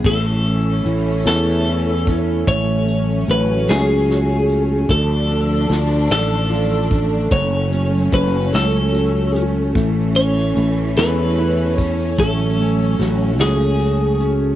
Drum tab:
CC |x-----|------|------|------|
HH |-xxxxx|xxxxxx|xxxxxx|xxxxxx|
SD |---o--|---oo-|--oo--|---o--|
BD |o----o|o-----|o----o|o-o---|

CC |------|------|
HH |xxxxxx|xxxxxx|
SD |---o--|--oo--|
BD |o----o|o-----|